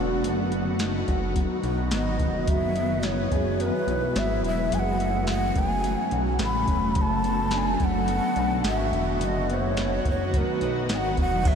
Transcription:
Already playing: E1 D3 F#3 A3 B3 D4 F#4 A4
0.23 F#1 F#2 D#3 F#3 B3, closed hi-hat
0.51 B3, closed hi-hat
0.79 D#4, snare, closed hi-hat
1.08 F#1 F#4, kick, closed hi-hat
1.35 F#3, kick, closed hi-hat
1.63 B1 D#4, closed hi-hat
1.91 G#1 B3 D#5, snare, closed hi-hat
2.19 E1 D#4, kick, closed hi-hat
2.47 F#1 F#2 E3 G#3 E5, kick, closed hi-hat
2.76 B3, closed hi-hat
3.03 E4 C#5, snare, closed hi-hat
3.31 F#1 G#4, kick, closed hi-hat
3.60 F#3 B4, closed hi-hat
3.87 B1 E4, closed hi-hat
4.16 G#1 B3 E5, snare, closed hi-hat
4.43 E1 E4 E5, closed hi-hat
4.72 F#1 F#2 C#3 F#3 A3 G#5, closed hi-hat
4.79 F#5
5.00 A3, closed hi-hat
5.27 C#4 F#5, snare, closed hi-hat
5.56 F#1 A4 G#5, kick, closed hi-hat
5.84 F#3, closed hi-hat
6.11 B1 C#4, closed hi-hat
6.39 A1 A3, snare, closed hi-hat
6.44 B5
6.67 E1 C#4, kick, closed hi-hat
6.95 F#1 D3 F#3 B3 F#4, kick, closed hi-hat
7.02 A5
7.24 B3, closed hi-hat
7.51 D4, snare, closed hi-hat
7.57 G#5
7.80 F#1 A4, kick, closed hi-hat
7.84 F#5
8.08 B3, closed hi-hat
8.36 B1 D4, closed hi-hat
8.64 G#1 B3 E5, snare, closed hi-hat
8.92 E1 D4, closed hi-hat
9.20 F#1 F#2 D#3 F#3 B3 F#4, closed hi-hat
9.25 D#5
9.50 B3, closed hi-hat
9.54 C#5
9.77 D#4, snare, closed hi-hat
10.05 F#1 F#4, kick, closed hi-hat
10.10 C#5
10.34 F#3 B4, kick, closed hi-hat
10.61 B1 D#4, closed hi-hat
10.89 G#1 B3, snare, closed hi-hat
10.94 F#5 G#5
11.17 E1 D#4 F#5, kick, closed hi-hat
11.45 F#1 F#2 E5, kick, ride

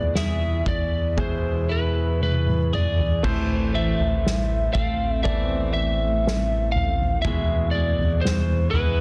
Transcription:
Already playing: E2 B2 E3 G#3 B3 E4 G#4 D5
0.15 E4 G#4 E5, snare
0.66 E2 D5, kick, floor tom
1.17 B2 G#3 E4 G#4 C5, kick, floor tom
1.69 E4 B4
2.21 B4, high tom
2.47 mid tom
2.73 G#4 D5, mid tom
2.99 floor tom
3.23 A1 A2 E3 A3 C4 A4 C5, kick, floor tom, crash
3.74 A3 E5
3.99 A1, floor tom
4.26 snare
4.73 A1 A3 C4 F5, kick, floor tom
5.23 E3 A3 B3 C4 A4 D5 E5, kick, floor tom
5.30 C4
5.73 E5
6.27 snare
6.72 F5, floor tom
7.00 floor tom
7.22 E2 B2 E3 G#3 E4 G#4 E5, kick, floor tom
7.71 G#3 D5
7.98 E2, floor tom
8.21 C5, snare
8.71 E2 G#3 B3 B4, floor tom
8.75 E4

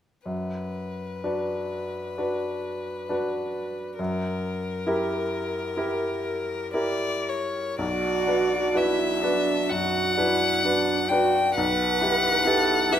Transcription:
0.26 F#2 B4
1.24 D4 F#4 B4
2.18 D4 F#4 B4
3.09 D4 F#4 B4
3.99 F#2 A#4
4.87 E4 G4 A#4
5.77 E4 G4 A#4
6.74 E4 G4 A#4 D5
7.28 C#5
7.79 B1 F#4 D5
8.27 D4 F#4 B4
8.74 D4 E4 F#4 B4 E5
9.22 D4 F#4 B4
9.70 F#2 F#4 F#5
10.18 D4 E4 F#4 B4
10.64 D4 F#4 B4
11.08 D4 F#4 B4 G5
11.55 B1 B4 F#5
12.01 E4 G4 B4
12.45 E4 G4 A4 B4
12.91 E4 G4 B4 E5

